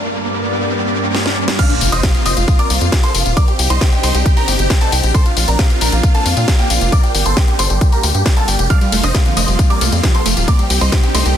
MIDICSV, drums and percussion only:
0, 0, Header, 1, 2, 480
1, 0, Start_track
1, 0, Tempo, 444444
1, 1717, Time_signature, 4, 2, 24, 8
1, 12282, End_track
2, 0, Start_track
2, 0, Title_t, "Drums"
2, 1237, Note_on_c, 9, 38, 63
2, 1345, Note_off_c, 9, 38, 0
2, 1357, Note_on_c, 9, 38, 65
2, 1465, Note_off_c, 9, 38, 0
2, 1597, Note_on_c, 9, 38, 87
2, 1705, Note_off_c, 9, 38, 0
2, 1717, Note_on_c, 9, 36, 120
2, 1717, Note_on_c, 9, 42, 87
2, 1717, Note_on_c, 9, 49, 107
2, 1717, Note_on_c, 9, 54, 42
2, 1825, Note_off_c, 9, 36, 0
2, 1825, Note_off_c, 9, 42, 0
2, 1825, Note_off_c, 9, 49, 0
2, 1825, Note_off_c, 9, 54, 0
2, 1837, Note_on_c, 9, 42, 54
2, 1837, Note_on_c, 9, 54, 20
2, 1945, Note_off_c, 9, 42, 0
2, 1945, Note_off_c, 9, 54, 0
2, 1957, Note_on_c, 9, 46, 109
2, 1957, Note_on_c, 9, 54, 72
2, 2065, Note_off_c, 9, 46, 0
2, 2065, Note_off_c, 9, 54, 0
2, 2077, Note_on_c, 9, 42, 55
2, 2077, Note_on_c, 9, 54, 30
2, 2185, Note_off_c, 9, 42, 0
2, 2185, Note_off_c, 9, 54, 0
2, 2197, Note_on_c, 9, 36, 124
2, 2197, Note_on_c, 9, 38, 127
2, 2197, Note_on_c, 9, 42, 84
2, 2197, Note_on_c, 9, 54, 41
2, 2305, Note_off_c, 9, 36, 0
2, 2305, Note_off_c, 9, 38, 0
2, 2305, Note_off_c, 9, 42, 0
2, 2305, Note_off_c, 9, 54, 0
2, 2317, Note_on_c, 9, 42, 57
2, 2317, Note_on_c, 9, 54, 20
2, 2425, Note_off_c, 9, 42, 0
2, 2425, Note_off_c, 9, 54, 0
2, 2437, Note_on_c, 9, 46, 92
2, 2437, Note_on_c, 9, 54, 72
2, 2545, Note_off_c, 9, 46, 0
2, 2545, Note_off_c, 9, 54, 0
2, 2557, Note_on_c, 9, 42, 55
2, 2557, Note_on_c, 9, 54, 30
2, 2665, Note_off_c, 9, 42, 0
2, 2665, Note_off_c, 9, 54, 0
2, 2677, Note_on_c, 9, 36, 126
2, 2677, Note_on_c, 9, 42, 84
2, 2677, Note_on_c, 9, 54, 40
2, 2785, Note_off_c, 9, 36, 0
2, 2785, Note_off_c, 9, 42, 0
2, 2785, Note_off_c, 9, 54, 0
2, 2797, Note_on_c, 9, 42, 55
2, 2797, Note_on_c, 9, 54, 20
2, 2905, Note_off_c, 9, 42, 0
2, 2905, Note_off_c, 9, 54, 0
2, 2917, Note_on_c, 9, 46, 109
2, 2917, Note_on_c, 9, 54, 72
2, 3025, Note_off_c, 9, 46, 0
2, 3025, Note_off_c, 9, 54, 0
2, 3037, Note_on_c, 9, 42, 56
2, 3037, Note_on_c, 9, 54, 30
2, 3145, Note_off_c, 9, 42, 0
2, 3145, Note_off_c, 9, 54, 0
2, 3157, Note_on_c, 9, 36, 118
2, 3157, Note_on_c, 9, 38, 125
2, 3157, Note_on_c, 9, 42, 86
2, 3157, Note_on_c, 9, 54, 41
2, 3265, Note_off_c, 9, 36, 0
2, 3265, Note_off_c, 9, 38, 0
2, 3265, Note_off_c, 9, 42, 0
2, 3265, Note_off_c, 9, 54, 0
2, 3277, Note_on_c, 9, 42, 57
2, 3277, Note_on_c, 9, 54, 21
2, 3385, Note_off_c, 9, 42, 0
2, 3385, Note_off_c, 9, 54, 0
2, 3397, Note_on_c, 9, 46, 97
2, 3397, Note_on_c, 9, 54, 72
2, 3505, Note_off_c, 9, 46, 0
2, 3505, Note_off_c, 9, 54, 0
2, 3517, Note_on_c, 9, 42, 58
2, 3517, Note_on_c, 9, 54, 32
2, 3625, Note_off_c, 9, 42, 0
2, 3625, Note_off_c, 9, 54, 0
2, 3637, Note_on_c, 9, 36, 121
2, 3637, Note_on_c, 9, 42, 82
2, 3637, Note_on_c, 9, 54, 41
2, 3745, Note_off_c, 9, 36, 0
2, 3745, Note_off_c, 9, 42, 0
2, 3745, Note_off_c, 9, 54, 0
2, 3757, Note_on_c, 9, 42, 53
2, 3757, Note_on_c, 9, 54, 21
2, 3865, Note_off_c, 9, 42, 0
2, 3865, Note_off_c, 9, 54, 0
2, 3877, Note_on_c, 9, 46, 115
2, 3877, Note_on_c, 9, 54, 71
2, 3985, Note_off_c, 9, 46, 0
2, 3985, Note_off_c, 9, 54, 0
2, 3997, Note_on_c, 9, 42, 54
2, 4105, Note_off_c, 9, 42, 0
2, 4117, Note_on_c, 9, 36, 125
2, 4117, Note_on_c, 9, 38, 125
2, 4117, Note_on_c, 9, 42, 80
2, 4117, Note_on_c, 9, 54, 41
2, 4225, Note_off_c, 9, 36, 0
2, 4225, Note_off_c, 9, 38, 0
2, 4225, Note_off_c, 9, 42, 0
2, 4225, Note_off_c, 9, 54, 0
2, 4237, Note_on_c, 9, 42, 55
2, 4237, Note_on_c, 9, 54, 20
2, 4345, Note_off_c, 9, 42, 0
2, 4345, Note_off_c, 9, 54, 0
2, 4357, Note_on_c, 9, 46, 98
2, 4357, Note_on_c, 9, 54, 71
2, 4465, Note_off_c, 9, 46, 0
2, 4465, Note_off_c, 9, 54, 0
2, 4477, Note_on_c, 9, 42, 55
2, 4477, Note_on_c, 9, 54, 31
2, 4585, Note_off_c, 9, 42, 0
2, 4585, Note_off_c, 9, 54, 0
2, 4597, Note_on_c, 9, 36, 127
2, 4597, Note_on_c, 9, 42, 83
2, 4597, Note_on_c, 9, 54, 41
2, 4705, Note_off_c, 9, 36, 0
2, 4705, Note_off_c, 9, 42, 0
2, 4705, Note_off_c, 9, 54, 0
2, 4718, Note_on_c, 9, 42, 56
2, 4718, Note_on_c, 9, 54, 21
2, 4826, Note_off_c, 9, 42, 0
2, 4826, Note_off_c, 9, 54, 0
2, 4838, Note_on_c, 9, 46, 108
2, 4838, Note_on_c, 9, 54, 71
2, 4946, Note_off_c, 9, 46, 0
2, 4946, Note_off_c, 9, 54, 0
2, 4957, Note_on_c, 9, 42, 54
2, 4957, Note_on_c, 9, 54, 31
2, 5065, Note_off_c, 9, 42, 0
2, 5065, Note_off_c, 9, 54, 0
2, 5077, Note_on_c, 9, 36, 124
2, 5077, Note_on_c, 9, 38, 126
2, 5077, Note_on_c, 9, 42, 84
2, 5077, Note_on_c, 9, 54, 41
2, 5185, Note_off_c, 9, 36, 0
2, 5185, Note_off_c, 9, 38, 0
2, 5185, Note_off_c, 9, 42, 0
2, 5185, Note_off_c, 9, 54, 0
2, 5198, Note_on_c, 9, 42, 54
2, 5198, Note_on_c, 9, 54, 21
2, 5306, Note_off_c, 9, 42, 0
2, 5306, Note_off_c, 9, 54, 0
2, 5317, Note_on_c, 9, 46, 100
2, 5317, Note_on_c, 9, 54, 73
2, 5425, Note_off_c, 9, 46, 0
2, 5425, Note_off_c, 9, 54, 0
2, 5437, Note_on_c, 9, 42, 56
2, 5437, Note_on_c, 9, 54, 32
2, 5545, Note_off_c, 9, 42, 0
2, 5545, Note_off_c, 9, 54, 0
2, 5557, Note_on_c, 9, 36, 122
2, 5557, Note_on_c, 9, 42, 81
2, 5557, Note_on_c, 9, 54, 43
2, 5665, Note_off_c, 9, 36, 0
2, 5665, Note_off_c, 9, 42, 0
2, 5665, Note_off_c, 9, 54, 0
2, 5677, Note_on_c, 9, 42, 54
2, 5677, Note_on_c, 9, 54, 21
2, 5785, Note_off_c, 9, 42, 0
2, 5785, Note_off_c, 9, 54, 0
2, 5797, Note_on_c, 9, 46, 116
2, 5797, Note_on_c, 9, 54, 75
2, 5905, Note_off_c, 9, 46, 0
2, 5905, Note_off_c, 9, 54, 0
2, 5917, Note_on_c, 9, 42, 51
2, 5917, Note_on_c, 9, 54, 31
2, 6025, Note_off_c, 9, 42, 0
2, 6025, Note_off_c, 9, 54, 0
2, 6037, Note_on_c, 9, 36, 127
2, 6037, Note_on_c, 9, 38, 123
2, 6037, Note_on_c, 9, 42, 78
2, 6037, Note_on_c, 9, 54, 42
2, 6145, Note_off_c, 9, 36, 0
2, 6145, Note_off_c, 9, 38, 0
2, 6145, Note_off_c, 9, 42, 0
2, 6145, Note_off_c, 9, 54, 0
2, 6157, Note_on_c, 9, 42, 52
2, 6157, Note_on_c, 9, 54, 21
2, 6265, Note_off_c, 9, 42, 0
2, 6265, Note_off_c, 9, 54, 0
2, 6277, Note_on_c, 9, 46, 99
2, 6277, Note_on_c, 9, 54, 74
2, 6385, Note_off_c, 9, 46, 0
2, 6385, Note_off_c, 9, 54, 0
2, 6397, Note_on_c, 9, 42, 52
2, 6397, Note_on_c, 9, 54, 31
2, 6505, Note_off_c, 9, 42, 0
2, 6505, Note_off_c, 9, 54, 0
2, 6517, Note_on_c, 9, 36, 127
2, 6517, Note_on_c, 9, 42, 80
2, 6517, Note_on_c, 9, 54, 42
2, 6625, Note_off_c, 9, 36, 0
2, 6625, Note_off_c, 9, 42, 0
2, 6625, Note_off_c, 9, 54, 0
2, 6637, Note_on_c, 9, 42, 54
2, 6637, Note_on_c, 9, 54, 21
2, 6745, Note_off_c, 9, 42, 0
2, 6745, Note_off_c, 9, 54, 0
2, 6757, Note_on_c, 9, 46, 112
2, 6757, Note_on_c, 9, 54, 73
2, 6865, Note_off_c, 9, 46, 0
2, 6865, Note_off_c, 9, 54, 0
2, 6877, Note_on_c, 9, 42, 53
2, 6877, Note_on_c, 9, 54, 31
2, 6985, Note_off_c, 9, 42, 0
2, 6985, Note_off_c, 9, 54, 0
2, 6997, Note_on_c, 9, 36, 126
2, 6997, Note_on_c, 9, 38, 122
2, 6997, Note_on_c, 9, 42, 80
2, 6997, Note_on_c, 9, 54, 41
2, 7105, Note_off_c, 9, 36, 0
2, 7105, Note_off_c, 9, 38, 0
2, 7105, Note_off_c, 9, 42, 0
2, 7105, Note_off_c, 9, 54, 0
2, 7117, Note_on_c, 9, 42, 53
2, 7117, Note_on_c, 9, 54, 22
2, 7225, Note_off_c, 9, 42, 0
2, 7225, Note_off_c, 9, 54, 0
2, 7237, Note_on_c, 9, 46, 104
2, 7237, Note_on_c, 9, 54, 77
2, 7345, Note_off_c, 9, 46, 0
2, 7345, Note_off_c, 9, 54, 0
2, 7357, Note_on_c, 9, 42, 55
2, 7357, Note_on_c, 9, 54, 32
2, 7465, Note_off_c, 9, 42, 0
2, 7465, Note_off_c, 9, 54, 0
2, 7477, Note_on_c, 9, 36, 123
2, 7477, Note_on_c, 9, 42, 77
2, 7477, Note_on_c, 9, 54, 44
2, 7585, Note_off_c, 9, 36, 0
2, 7585, Note_off_c, 9, 42, 0
2, 7585, Note_off_c, 9, 54, 0
2, 7598, Note_on_c, 9, 42, 50
2, 7598, Note_on_c, 9, 54, 22
2, 7706, Note_off_c, 9, 42, 0
2, 7706, Note_off_c, 9, 54, 0
2, 7718, Note_on_c, 9, 46, 113
2, 7718, Note_on_c, 9, 54, 80
2, 7826, Note_off_c, 9, 46, 0
2, 7826, Note_off_c, 9, 54, 0
2, 7838, Note_on_c, 9, 42, 52
2, 7838, Note_on_c, 9, 54, 33
2, 7946, Note_off_c, 9, 42, 0
2, 7946, Note_off_c, 9, 54, 0
2, 7957, Note_on_c, 9, 36, 125
2, 7957, Note_on_c, 9, 38, 119
2, 7957, Note_on_c, 9, 42, 76
2, 7957, Note_on_c, 9, 54, 44
2, 8065, Note_off_c, 9, 36, 0
2, 8065, Note_off_c, 9, 38, 0
2, 8065, Note_off_c, 9, 42, 0
2, 8065, Note_off_c, 9, 54, 0
2, 8077, Note_on_c, 9, 42, 50
2, 8077, Note_on_c, 9, 54, 22
2, 8185, Note_off_c, 9, 42, 0
2, 8185, Note_off_c, 9, 54, 0
2, 8197, Note_on_c, 9, 46, 100
2, 8197, Note_on_c, 9, 54, 78
2, 8305, Note_off_c, 9, 46, 0
2, 8305, Note_off_c, 9, 54, 0
2, 8317, Note_on_c, 9, 42, 49
2, 8317, Note_on_c, 9, 54, 32
2, 8425, Note_off_c, 9, 42, 0
2, 8425, Note_off_c, 9, 54, 0
2, 8437, Note_on_c, 9, 36, 127
2, 8437, Note_on_c, 9, 42, 77
2, 8437, Note_on_c, 9, 54, 44
2, 8545, Note_off_c, 9, 36, 0
2, 8545, Note_off_c, 9, 42, 0
2, 8545, Note_off_c, 9, 54, 0
2, 8558, Note_on_c, 9, 42, 52
2, 8558, Note_on_c, 9, 54, 22
2, 8666, Note_off_c, 9, 42, 0
2, 8666, Note_off_c, 9, 54, 0
2, 8677, Note_on_c, 9, 46, 110
2, 8677, Note_on_c, 9, 54, 77
2, 8785, Note_off_c, 9, 46, 0
2, 8785, Note_off_c, 9, 54, 0
2, 8797, Note_on_c, 9, 42, 49
2, 8797, Note_on_c, 9, 54, 33
2, 8905, Note_off_c, 9, 42, 0
2, 8905, Note_off_c, 9, 54, 0
2, 8917, Note_on_c, 9, 36, 123
2, 8918, Note_on_c, 9, 38, 122
2, 8918, Note_on_c, 9, 42, 77
2, 8918, Note_on_c, 9, 54, 43
2, 9025, Note_off_c, 9, 36, 0
2, 9026, Note_off_c, 9, 38, 0
2, 9026, Note_off_c, 9, 42, 0
2, 9026, Note_off_c, 9, 54, 0
2, 9037, Note_on_c, 9, 42, 52
2, 9037, Note_on_c, 9, 54, 22
2, 9145, Note_off_c, 9, 42, 0
2, 9145, Note_off_c, 9, 54, 0
2, 9157, Note_on_c, 9, 46, 96
2, 9157, Note_on_c, 9, 54, 78
2, 9265, Note_off_c, 9, 46, 0
2, 9265, Note_off_c, 9, 54, 0
2, 9277, Note_on_c, 9, 42, 52
2, 9277, Note_on_c, 9, 54, 34
2, 9385, Note_off_c, 9, 42, 0
2, 9385, Note_off_c, 9, 54, 0
2, 9397, Note_on_c, 9, 36, 114
2, 9398, Note_on_c, 9, 42, 80
2, 9398, Note_on_c, 9, 51, 58
2, 9398, Note_on_c, 9, 54, 47
2, 9505, Note_off_c, 9, 36, 0
2, 9506, Note_off_c, 9, 42, 0
2, 9506, Note_off_c, 9, 51, 0
2, 9506, Note_off_c, 9, 54, 0
2, 9518, Note_on_c, 9, 42, 51
2, 9518, Note_on_c, 9, 54, 23
2, 9626, Note_off_c, 9, 42, 0
2, 9626, Note_off_c, 9, 54, 0
2, 9638, Note_on_c, 9, 46, 109
2, 9638, Note_on_c, 9, 51, 81
2, 9638, Note_on_c, 9, 54, 81
2, 9746, Note_off_c, 9, 46, 0
2, 9746, Note_off_c, 9, 51, 0
2, 9746, Note_off_c, 9, 54, 0
2, 9757, Note_on_c, 9, 42, 51
2, 9757, Note_on_c, 9, 54, 34
2, 9865, Note_off_c, 9, 42, 0
2, 9865, Note_off_c, 9, 54, 0
2, 9877, Note_on_c, 9, 36, 121
2, 9878, Note_on_c, 9, 38, 112
2, 9878, Note_on_c, 9, 42, 78
2, 9878, Note_on_c, 9, 51, 57
2, 9878, Note_on_c, 9, 54, 44
2, 9985, Note_off_c, 9, 36, 0
2, 9986, Note_off_c, 9, 38, 0
2, 9986, Note_off_c, 9, 42, 0
2, 9986, Note_off_c, 9, 51, 0
2, 9986, Note_off_c, 9, 54, 0
2, 9998, Note_on_c, 9, 42, 51
2, 9998, Note_on_c, 9, 54, 23
2, 10106, Note_off_c, 9, 42, 0
2, 10106, Note_off_c, 9, 54, 0
2, 10118, Note_on_c, 9, 46, 95
2, 10118, Note_on_c, 9, 51, 81
2, 10118, Note_on_c, 9, 54, 79
2, 10226, Note_off_c, 9, 46, 0
2, 10226, Note_off_c, 9, 51, 0
2, 10226, Note_off_c, 9, 54, 0
2, 10237, Note_on_c, 9, 42, 51
2, 10237, Note_on_c, 9, 54, 34
2, 10345, Note_off_c, 9, 42, 0
2, 10345, Note_off_c, 9, 54, 0
2, 10357, Note_on_c, 9, 36, 122
2, 10358, Note_on_c, 9, 42, 77
2, 10358, Note_on_c, 9, 51, 56
2, 10358, Note_on_c, 9, 54, 46
2, 10465, Note_off_c, 9, 36, 0
2, 10466, Note_off_c, 9, 42, 0
2, 10466, Note_off_c, 9, 51, 0
2, 10466, Note_off_c, 9, 54, 0
2, 10478, Note_on_c, 9, 42, 52
2, 10478, Note_on_c, 9, 54, 23
2, 10586, Note_off_c, 9, 42, 0
2, 10586, Note_off_c, 9, 54, 0
2, 10598, Note_on_c, 9, 46, 109
2, 10598, Note_on_c, 9, 51, 81
2, 10598, Note_on_c, 9, 54, 79
2, 10706, Note_off_c, 9, 46, 0
2, 10706, Note_off_c, 9, 51, 0
2, 10706, Note_off_c, 9, 54, 0
2, 10718, Note_on_c, 9, 42, 50
2, 10718, Note_on_c, 9, 54, 33
2, 10826, Note_off_c, 9, 42, 0
2, 10826, Note_off_c, 9, 54, 0
2, 10837, Note_on_c, 9, 36, 117
2, 10838, Note_on_c, 9, 38, 114
2, 10838, Note_on_c, 9, 42, 77
2, 10838, Note_on_c, 9, 51, 58
2, 10838, Note_on_c, 9, 54, 46
2, 10945, Note_off_c, 9, 36, 0
2, 10946, Note_off_c, 9, 38, 0
2, 10946, Note_off_c, 9, 42, 0
2, 10946, Note_off_c, 9, 51, 0
2, 10946, Note_off_c, 9, 54, 0
2, 10958, Note_on_c, 9, 42, 53
2, 10958, Note_on_c, 9, 54, 23
2, 11066, Note_off_c, 9, 42, 0
2, 11066, Note_off_c, 9, 54, 0
2, 11078, Note_on_c, 9, 46, 98
2, 11078, Note_on_c, 9, 51, 82
2, 11078, Note_on_c, 9, 54, 78
2, 11186, Note_off_c, 9, 46, 0
2, 11186, Note_off_c, 9, 51, 0
2, 11186, Note_off_c, 9, 54, 0
2, 11198, Note_on_c, 9, 42, 54
2, 11198, Note_on_c, 9, 54, 35
2, 11306, Note_off_c, 9, 42, 0
2, 11306, Note_off_c, 9, 54, 0
2, 11317, Note_on_c, 9, 36, 112
2, 11318, Note_on_c, 9, 42, 82
2, 11318, Note_on_c, 9, 51, 61
2, 11318, Note_on_c, 9, 54, 46
2, 11425, Note_off_c, 9, 36, 0
2, 11426, Note_off_c, 9, 42, 0
2, 11426, Note_off_c, 9, 51, 0
2, 11426, Note_off_c, 9, 54, 0
2, 11438, Note_on_c, 9, 42, 53
2, 11438, Note_on_c, 9, 54, 22
2, 11546, Note_off_c, 9, 42, 0
2, 11546, Note_off_c, 9, 54, 0
2, 11558, Note_on_c, 9, 46, 107
2, 11558, Note_on_c, 9, 51, 83
2, 11558, Note_on_c, 9, 54, 80
2, 11666, Note_off_c, 9, 46, 0
2, 11666, Note_off_c, 9, 51, 0
2, 11666, Note_off_c, 9, 54, 0
2, 11678, Note_on_c, 9, 42, 53
2, 11678, Note_on_c, 9, 54, 34
2, 11786, Note_off_c, 9, 42, 0
2, 11786, Note_off_c, 9, 54, 0
2, 11797, Note_on_c, 9, 36, 119
2, 11798, Note_on_c, 9, 38, 114
2, 11798, Note_on_c, 9, 42, 80
2, 11798, Note_on_c, 9, 51, 60
2, 11798, Note_on_c, 9, 54, 45
2, 11905, Note_off_c, 9, 36, 0
2, 11906, Note_off_c, 9, 38, 0
2, 11906, Note_off_c, 9, 42, 0
2, 11906, Note_off_c, 9, 51, 0
2, 11906, Note_off_c, 9, 54, 0
2, 11918, Note_on_c, 9, 42, 54
2, 11918, Note_on_c, 9, 54, 23
2, 12026, Note_off_c, 9, 42, 0
2, 12026, Note_off_c, 9, 54, 0
2, 12037, Note_on_c, 9, 46, 91
2, 12037, Note_on_c, 9, 51, 83
2, 12037, Note_on_c, 9, 54, 82
2, 12145, Note_off_c, 9, 46, 0
2, 12145, Note_off_c, 9, 51, 0
2, 12145, Note_off_c, 9, 54, 0
2, 12157, Note_on_c, 9, 42, 52
2, 12157, Note_on_c, 9, 54, 33
2, 12265, Note_off_c, 9, 42, 0
2, 12265, Note_off_c, 9, 54, 0
2, 12282, End_track
0, 0, End_of_file